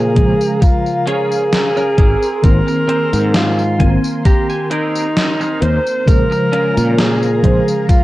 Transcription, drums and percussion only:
0.16 kick medium
0.16 closed hi-hat medium
0.41 tambourine medium
0.62 kick loud
0.62 closed hi-hat medium
0.62 tambourine soft
0.86 tambourine soft
1.07 closed hi-hat medium
1.31 tambourine medium
1.53 snare loud
1.53 closed hi-hat medium
1.53 tambourine soft
1.77 tambourine soft
1.98 kick loud
1.98 closed hi-hat medium
2.22 tambourine medium
2.44 kick loud
2.44 closed hi-hat medium
2.44 tambourine soft
2.68 tambourine soft
2.89 closed hi-hat medium
3.13 closed hi-hat soft
3.13 tambourine medium
3.34 snare loud
3.34 closed hi-hat medium
3.34 tambourine soft
3.59 tambourine soft
3.80 kick medium
3.80 closed hi-hat medium
4.04 tambourine medium
4.25 kick loud
4.25 closed hi-hat medium
4.25 tambourine soft
4.50 tambourine soft
4.71 closed hi-hat medium
4.95 tambourine medium
5.17 snare loud
5.17 closed hi-hat medium
5.17 tambourine soft
5.41 tambourine soft
5.62 closed hi-hat medium
5.86 tambourine medium
6.07 kick loud
6.07 closed hi-hat medium
6.07 tambourine soft
6.32 tambourine soft
6.53 closed hi-hat medium
6.77 closed hi-hat soft
6.77 tambourine medium
6.98 snare loud
6.98 closed hi-hat medium
6.98 tambourine soft
7.23 tambourine soft
7.44 kick medium
7.44 closed hi-hat medium
7.68 tambourine medium
7.89 kick loud
7.89 closed hi-hat medium
7.89 tambourine soft

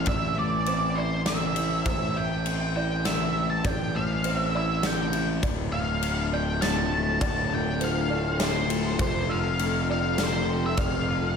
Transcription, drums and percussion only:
0.06 kick medium
0.06 ride medium
0.66 ride soft
1.26 snare medium
1.26 ride soft
1.56 ride soft
1.86 kick loud
1.86 ride medium
2.46 ride soft
3.05 snare medium
3.05 ride medium
3.65 kick loud
3.65 ride medium
4.24 ride medium
4.83 snare medium
4.83 ride soft
5.13 ride soft
5.43 kick medium
5.43 ride medium
6.03 ride soft
6.62 snare medium
6.62 ride soft
7.21 kick medium
7.21 ride medium
7.81 ride soft
8.40 snare medium
8.40 ride medium
8.70 ride medium
8.99 kick loud
8.99 ride medium
9.59 ride medium
10.18 snare medium
10.18 ride medium
10.78 kick loud
10.78 ride medium

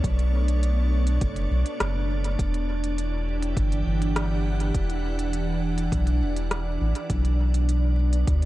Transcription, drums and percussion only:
0.04 kick loud
0.04 closed hi-hat medium
0.19 closed hi-hat soft
0.48 closed hi-hat soft
0.63 closed hi-hat medium
1.07 closed hi-hat soft
1.21 kick loud
1.21 closed hi-hat medium
1.36 closed hi-hat soft
1.66 closed hi-hat soft
1.80 cross-stick loud
1.80 closed hi-hat medium
2.24 closed hi-hat soft
2.39 kick loud
2.39 closed hi-hat medium
2.54 closed hi-hat soft
2.84 closed hi-hat soft
2.98 closed hi-hat soft
3.42 closed hi-hat soft
3.57 kick loud
3.57 closed hi-hat soft
3.72 closed hi-hat soft
4.02 closed hi-hat soft
4.16 cross-stick loud
4.16 closed hi-hat medium
4.60 closed hi-hat soft
4.74 kick loud
4.74 closed hi-hat medium
4.90 closed hi-hat soft
5.19 closed hi-hat soft
5.33 closed hi-hat medium
5.78 closed hi-hat soft
5.92 kick loud
5.92 closed hi-hat soft
6.07 closed hi-hat soft
6.36 closed hi-hat soft
6.51 cross-stick medium
6.51 closed hi-hat medium
6.95 closed hi-hat soft
7.10 kick loud
7.10 closed hi-hat medium
7.25 closed hi-hat soft
7.54 closed hi-hat soft
7.69 closed hi-hat medium
8.13 closed hi-hat soft
8.27 kick loud
8.27 closed hi-hat medium

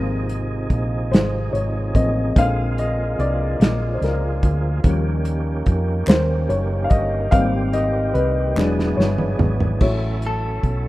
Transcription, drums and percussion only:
0.29 closed hi-hat soft
0.70 kick medium
0.70 closed hi-hat soft
1.13 snare loud
1.13 closed hi-hat medium
1.55 closed hi-hat soft
1.95 kick medium
1.95 closed hi-hat soft
2.36 kick loud
2.36 closed hi-hat medium
2.78 closed hi-hat soft
3.20 closed hi-hat soft
3.61 snare medium
3.61 closed hi-hat medium
4.02 snare soft
4.02 closed hi-hat soft
4.43 kick medium
4.43 closed hi-hat soft
4.84 kick medium
4.84 closed hi-hat medium
5.25 closed hi-hat medium
5.66 kick medium
5.66 closed hi-hat soft
6.07 snare loud
6.07 clap medium
6.07 closed hi-hat medium
6.50 closed hi-hat soft
6.90 kick medium
6.90 closed hi-hat soft
7.32 kick loud
7.32 closed hi-hat medium
7.73 closed hi-hat soft
8.15 closed hi-hat soft
8.57 snare medium
8.57 clap medium
8.79 snare medium
9.00 snare medium
9.18 mid tom medium
9.39 floor tom medium
9.60 floor tom medium
9.81 kick medium
9.81 crash medium
10.22 closed hi-hat soft
10.63 kick medium
10.63 closed hi-hat soft

